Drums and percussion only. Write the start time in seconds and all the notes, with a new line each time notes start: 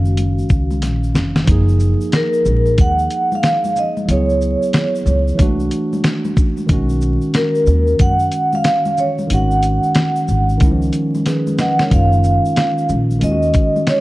0.05 shaker
0.17 closed hi-hat, high conga, shaker
0.39 shaker
0.49 kick, shaker
0.71 high conga, shaker
0.82 snare, closed hi-hat, shaker
1.04 shaker
1.15 snare, low conga, shaker
1.36 snare, shaker
1.47 kick, closed hi-hat, shaker
1.69 shaker
1.80 shaker
2.01 shaker
2.12 snare, closed hi-hat, low conga, shaker
2.33 shaker
2.45 high conga, low conga, shaker
2.66 shaker
2.78 kick, closed hi-hat, high conga, shaker
2.99 shaker
3.11 closed hi-hat, shaker
3.32 high conga, shaker
3.43 snare, closed hi-hat, shaker
3.64 high conga, shaker
3.76 low conga, shaker
3.97 high conga, shaker
4.09 closed hi-hat, shaker
4.30 shaker
4.41 shaker
4.62 shaker
4.73 snare, closed hi-hat, low conga, shaker
4.95 shaker
5.06 high conga, low conga, shaker
5.28 shaker
5.39 kick, closed hi-hat, high conga, shaker
5.60 shaker
5.71 closed hi-hat, shaker
5.93 high conga, shaker
6.04 snare, closed hi-hat, shaker
6.25 high conga, shaker
6.37 kick, low conga, shaker
6.57 high conga, shaker
6.69 kick, closed hi-hat, shaker
6.89 shaker
7.01 shaker
7.21 shaker
7.34 snare, closed hi-hat, low conga, shaker
7.55 shaker
7.66 high conga, low conga, shaker
7.87 shaker
7.99 kick, closed hi-hat, high conga, shaker
8.19 shaker
8.32 closed hi-hat, shaker
8.53 high conga, shaker
8.64 snare, closed hi-hat, shaker
8.85 high conga, shaker
8.97 low conga, shaker
9.18 high conga, shaker
9.30 closed hi-hat, shaker
9.51 shaker
9.62 closed hi-hat, shaker
9.83 shaker
9.95 snare, closed hi-hat, low conga, shaker
10.16 shaker
10.28 high conga, low conga, shaker
10.49 shaker
10.60 kick, closed hi-hat, high conga, shaker
10.82 shaker
10.93 closed hi-hat, shaker
11.15 high conga, shaker
11.26 snare, closed hi-hat, shaker
11.47 high conga, shaker
11.58 snare, low conga, shaker
11.79 snare, high conga, shaker
11.91 kick, closed hi-hat, shaker
12.12 shaker
12.24 shaker
12.45 shaker
12.56 snare, closed hi-hat, low conga, shaker
12.78 shaker
12.89 high conga, low conga, shaker
13.11 shaker
13.21 closed hi-hat, high conga, shaker
13.43 shaker
13.54 kick, closed hi-hat, shaker
13.76 high conga, shaker
13.87 snare, closed hi-hat, shaker